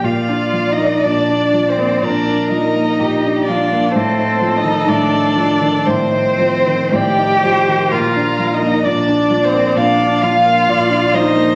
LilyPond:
<<
  \new Staff \with { instrumentName = "Violin" } { \time 4/4 \key bes \major \tempo 4 = 63 \tuplet 3/2 { f''4 ees''8 d''4 c''8 } d''8 ees''4 d''8 | \tuplet 3/2 { c''4 ees''8 } d''4 c''4 g''4 | \tuplet 3/2 { f''4 ees''8 d''4 c''8 } d''8 f''4 ees''8 | }
  \new Staff \with { instrumentName = "Violin" } { \time 4/4 \key bes \major d''2 bes'4 g'8 f'8 | a'2 c''4 d''8 c''8 | bes'4 d''4 f''4 d''8 c''8 | }
  \new Staff \with { instrumentName = "Cello" } { \time 4/4 \key bes \major \tuplet 3/2 { f'4 ees'8 d'4 c'8 } d'8 ees'4 d'8 | \tuplet 3/2 { c'4 ees'8 } d'4 c'4 g'4 | \tuplet 3/2 { f'4 ees'8 d'4 c'8 } d'8 f'4 ees'8 | }
  \new Staff \with { instrumentName = "Grand piano" } { \clef bass \time 4/4 \key bes \major bes,16 d'16 f16 bes16 bes,16 d'16 f16 bes16 bes,16 d'16 f16 bes16 bes,16 d'16 f16 bes16 | a,16 ees'16 f16 ees16 a,16 ees'16 f16 ees16 a,16 ees'16 f16 ees16 a,16 ees'16 f16 ees16 | bes,16 d'16 f16 bes16 bes,16 d'16 f16 bes16 bes,16 d'16 f16 bes16 bes,16 d'16 f16 bes16 | }
>>